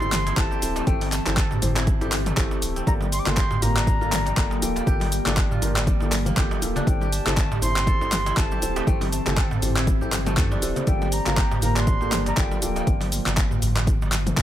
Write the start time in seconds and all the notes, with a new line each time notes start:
Already playing: E3 A3 C4 D4 G4 A4 C6
0.00 G1 C4 E4 G4 A4, darbuka tek, cabasa
0.12 clap, open hi-hat, mid tom, darbuka ka, cabasa
0.26 E4, closed hi-hat, darbuka tek, cabasa
0.37 G1 C4 E4 G4 A4 A5, kick, clap, closed hi-hat, cabasa
0.51 G4, darbuka ka, darbuka tek, cabasa
0.62 D1 C4 E4 G4 A4, open hi-hat, cabasa
0.76 A3, closed hi-hat, darbuka ka, darbuka tek, cabasa
0.87 G1 A3 C4 E4 G4 A4 G5, kick, closed hi-hat, cabasa
1.01 open hi-hat, darbuka tek, cabasa
1.12 A5, clap, open hi-hat, cabasa
1.26 G1 C4 E4 G4 A4, clap, closed hi-hat, darbuka tek, cabasa
1.37 A4, kick, clap, closed hi-hat, cabasa
1.51 darbuka tek, darbuka dum, cabasa
1.62 G1 C4 E4 G4 C5, open hi-hat, mid tom, darbuka dum, cabasa
1.76 E4, clap, closed hi-hat, darbuka ka, darbuka tek, cabasa
1.87 kick, closed hi-hat, cabasa
2.01 G1 C4 E4 G4 A4, closed hi-hat, darbuka ka, darbuka tek, cabasa
2.12 clap, open hi-hat, cabasa
2.26 A3, closed hi-hat, mid tom, darbuka tek, cabasa
2.37 G1 A3 C4 E4 G4 A4, kick, clap, closed hi-hat, cabasa
2.51 darbuka tek, cabasa
2.62 D1, open hi-hat, cabasa
2.76 C4, closed hi-hat, darbuka tek, cabasa
2.87 G1 F3 G3 A#3 F4 G4 A4 A#5, kick, closed hi-hat, high conga, cabasa
3.01 darbuka tek, high conga, cabasa
3.12 C6, open hi-hat, cabasa
3.19 D6
3.26 G1 A#3 F4 G4 A4 C6, clap, closed hi-hat, darbuka tek, low conga, cabasa
3.37 G4, kick, clap, closed hi-hat, cabasa
3.51 darbuka tek, darbuka dum, cabasa
3.62 G1 A#3 F4 G4 A#4 A#5, open hi-hat, darbuka dum, cabasa
3.75 D4, clap, closed hi-hat, darbuka ka, darbuka tek, cabasa
3.87 kick, closed hi-hat, cabasa
4.01 G1 A#3 F4 G4 A4, darbuka tek, cabasa
4.12 clap, open hi-hat, mid tom, darbuka ka, high conga, cabasa
4.26 G3, closed hi-hat, darbuka tek, cabasa
4.37 G1 G3 A#3 F4 G4 A4, kick, clap, closed hi-hat, cabasa
4.50 darbuka ka, high conga, darbuka tek, cabasa
4.62 D1 A#3 F4 G4 A4 G5, open hi-hat, cabasa
4.76 A#3, closed hi-hat, darbuka ka, darbuka tek, cabasa
4.86 G1 A#3 F4 G4 A4, kick, closed hi-hat, high conga, cabasa
5.00 open hi-hat, high conga, darbuka tek, cabasa
5.12 open hi-hat, cabasa
5.26 G1 A#3 D4 F4 G4 A4, clap, closed hi-hat, darbuka tek, low conga, cabasa
5.37 kick, clap, closed hi-hat, cabasa
5.51 F4, darbuka tek, darbuka dum, cabasa
5.62 G1 A#3 F4 G4 A#4, open hi-hat, darbuka dum, cabasa
5.76 G3, clap, closed hi-hat, darbuka tek, cabasa
5.87 G3, kick, closed hi-hat, cabasa
6.00 G1 A#3 F4 G4 A4, darbuka tek, cabasa
6.12 clap, open hi-hat, high conga, cabasa
6.25 A#3, closed hi-hat, mid tom, darbuka tek, high conga, low conga, cabasa
6.36 G1 A#3 F4 G4 A4, kick, clap, closed hi-hat, low conga, cabasa
6.51 darbuka tek, high conga, cabasa
6.62 D1 A#3 F4 G4 A4, open hi-hat, cabasa
6.76 D4, closed hi-hat, darbuka tek, low conga, cabasa
6.86 G1 E3 C4 E4 G4 A4 C5 G5, kick, closed hi-hat, high conga, cabasa
7.01 G4, high conga, darbuka tek, cabasa
7.12 A5, open hi-hat, cabasa
7.26 G1 A3 C4 E4 G4 A4, clap, closed hi-hat, darbuka tek, low conga, cabasa
7.37 A3, kick, clap, closed hi-hat, cabasa
7.52 darbuka tek, darbuka dum, cabasa
7.62 G1 C4 E4 G4 C5 C6, open hi-hat, darbuka dum, cabasa
7.76 C4, clap, closed hi-hat, darbuka ka, darbuka tek, cabasa
7.87 A4, kick, closed hi-hat, cabasa
8.01 G1 C4 E4 G4 A4, darbuka tek, cabasa
8.11 clap, open hi-hat, mid tom, darbuka ka, high conga, cabasa
8.26 E4, closed hi-hat, darbuka tek, cabasa
8.37 G1 C4 E4 G4 A4 A5, kick, clap, closed hi-hat, cabasa
8.51 G4, darbuka ka, high conga, darbuka tek, cabasa
8.62 D1 C4 E4 G4 A4, open hi-hat, cabasa
8.76 A3, closed hi-hat, darbuka ka, darbuka tek, cabasa
8.87 G1 A3 C4 E4 G4 A4 G5, kick, closed hi-hat, high conga, cabasa
9.01 open hi-hat, darbuka tek, high conga, cabasa
9.12 A5, open hi-hat, cabasa
9.26 G1 C4 E4 G4 A4, clap, closed hi-hat, darbuka tek, low conga, cabasa
9.37 A4, kick, clap, closed hi-hat, cabasa
9.51 darbuka tek, darbuka dum, cabasa
9.62 G1 C4 E4 G4 C5, open hi-hat, darbuka dum, cabasa
9.76 E4, clap, closed hi-hat, darbuka ka, darbuka tek, cabasa
9.87 kick, closed hi-hat, cabasa
10.01 G1 C4 E4 G4 A4, darbuka tek, cabasa
10.12 clap, open hi-hat, high conga, cabasa
10.26 A3, closed hi-hat, mid tom, high conga, darbuka tek, low conga, cabasa
10.37 G2 C4 E4 G4 A4, kick, clap, closed hi-hat, low conga, cabasa
10.51 D4, high conga, darbuka tek, cabasa
10.62 D1 C4 E4 G4 A4, open hi-hat, cabasa
10.76 closed hi-hat, darbuka tek, low conga, cabasa
10.86 G1 F3 G3 A#3 F4 G4 A4 G5, kick, closed hi-hat, high conga, cabasa
11.02 high conga, darbuka tek, cabasa
11.12 A#5, open hi-hat, cabasa
11.26 G1 A#3 F4 G4 A4, clap, closed hi-hat, darbuka tek, low conga, cabasa
11.37 G4, kick, clap, closed hi-hat, cabasa
11.51 darbuka tek, darbuka dum, cabasa
11.61 G1 A#3 F4 G4 A#4 A#5, open hi-hat, darbuka dum, cabasa
11.76 D4 C6, clap, closed hi-hat, darbuka ka, darbuka tek, cabasa
11.87 kick, closed hi-hat, cabasa
12.01 G1 A#3 F4 G4 A4, darbuka tek, cabasa
12.11 clap, open hi-hat, mid tom, darbuka ka, high conga, cabasa
12.26 G3 A#5, closed hi-hat, darbuka tek, cabasa
12.37 G1 G3 A#3 F4 G4 A4 G5, kick, clap, closed hi-hat, cabasa
12.51 darbuka ka, high conga, darbuka tek, cabasa
12.62 D1 A#3 F4 G4 A4 G5, open hi-hat, cabasa
12.76 A#3, closed hi-hat, darbuka ka, darbuka tek, cabasa
12.87 G1, kick, closed hi-hat, high conga, cabasa
13.01 open hi-hat, darbuka tek, high conga, cabasa
13.12 open hi-hat, cabasa
13.26 G1, clap, closed hi-hat, darbuka tek, low conga, cabasa
13.37 kick, clap, closed hi-hat, cabasa
13.51 darbuka tek, darbuka dum, cabasa
13.62 G1, open hi-hat, darbuka dum, cabasa
13.76 clap, closed hi-hat, darbuka tek, cabasa
13.87 kick, closed hi-hat, cabasa
14.02 G1, darbuka tek, cabasa
14.12 clap, open hi-hat, high conga, cabasa
14.26 closed hi-hat, mid tom, darbuka tek, high conga, low conga, cabasa
14.37 G1, kick, clap, closed hi-hat, low conga, cabasa